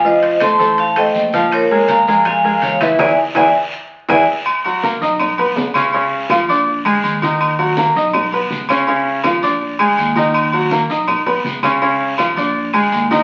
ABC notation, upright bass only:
X:1
M:4/4
L:1/8
Q:1/4=163
K:Ebm
V:1 name="Upright bass" clef=bass
F,,,3 =A,,,3 B,,,2- | B,,,3 F,,3 _F,,2 | =E,, z E,, z3 E,, z | z3 C,,3 ^C,,2- |
^C,,3 B,,,2 =D,, E,,2- | E,,3 C,,3 ^C,,2- | ^C,,3 B,,,2 =D,, E,,2- | E,,3 C,,3 ^C,,2- |
^C,,3 B,,,2 =D,, E,,2 |]